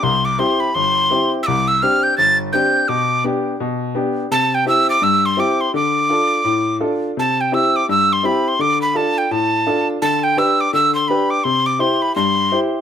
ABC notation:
X:1
M:4/4
L:1/16
Q:"Swing" 1/4=168
K:C
V:1 name="Tin whistle"
c'2 d'2 c'2 b2 c'6 z3/2 e'/2 | d'2 e'2 f'2 g'2 a'2 z2 g'4 | d'4 z12 | a2 g2 e'2 d'2 e'2 c'2 d'2 c'2 |
d'12 z4 | a2 g2 e'2 d'2 e'2 c'2 b2 c'2 | d'2 b2 a2 g2 a6 z2 | a2 g2 e'2 d'2 e'2 c'2 b2 d'2 |
c'2 d'2 c'2 b2 c'6 z2 |]
V:2 name="Upright piano"
C,,4 [CEG]4 G,,,4 [CEG]4 | C,,4 [CDG]4 G,,,4 [CDG]4 | B,,4 [B,DG]4 B,,4 [B,DG]4 | C,4 [CEG]4 G,,4 [CEG]4 |
D,4 [DFA]4 A,,4 [DFA]4 | C,4 [CEG]4 G,,4 [CEG]4 | D,4 [DFA]4 A,,4 [DFA]4 | D,4 [DGB]4 D,4 [DGB]4 |
C,4 [EGc]4 G,,4 [EGc]4 |]